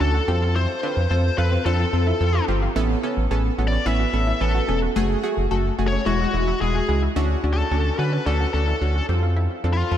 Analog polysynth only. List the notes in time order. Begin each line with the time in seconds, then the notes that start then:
0.01 C#4 D4 F#4
0.28 C4 F4 A4
0.83 C4 F4 B4
1.11 C4 F4 A4
1.38 C4 F4 A4
1.66 C4 F4 A4
1.93 C4 F4 A4
2.21 C4 F4 A4
2.48 C4 F4 G4
2.76 B3 C#4 A4
3.03 B3 C#4 A4
3.31 B3 C#4 A4
3.58 B3 C#4 A4
3.86 B3 C#4 B4
4.13 B3 C#4 A4
4.41 B3 C#4 B4
4.68 B3 C#4 A4
4.96 A3 F#4 G#4
5.23 A3 F#4 G#4
5.51 A3 F#4 A4
5.79 A3 F#4 G#4
6.06 G#3 E4 F#4
6.34 G#3 E4 F#4
6.61 G#3 E4 F#4
6.89 G#3 E4 F#4
7.16 C#4 D4 F#4
7.44 C#4 D4 F#4
7.71 C#4 D4 F#4
7.99 C#4 D4 F#4
8.26 C#4 D4 F#4
8.54 C#4 D4 F#4
8.81 C#4 D4 F#4
9.09 C4 F4 A4
9.64 C4 F4 A4
9.91 C4 F4 A4